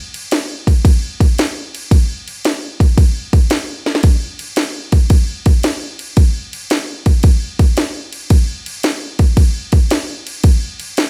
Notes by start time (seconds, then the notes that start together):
0.14 crash
0.31 snare, crash
0.67 kick, crash
0.85 kick, crash
1.20 kick, crash
1.38 snare, crash
1.75 crash
1.91 kick, crash
2.28 crash
2.45 snare, crash
2.80 kick, crash
2.98 kick, crash
3.33 kick, crash
3.50 snare, crash
3.86 snare
3.95 snare
4.03 kick, crash
4.39 crash
4.56 snare, crash
4.92 kick, crash
5.10 kick, crash
5.46 kick, crash
5.63 snare, crash
5.99 crash
6.17 kick, crash
6.53 crash
6.70 snare, crash
7.06 kick, crash
7.23 kick, crash
7.59 kick, crash
7.77 snare, crash
8.12 crash
8.30 kick, crash
8.66 crash
8.83 snare, crash
9.19 kick, crash
9.37 kick, crash
9.72 kick, crash
9.90 snare, crash
10.27 crash
10.44 kick, crash
10.80 crash
10.97 snare, crash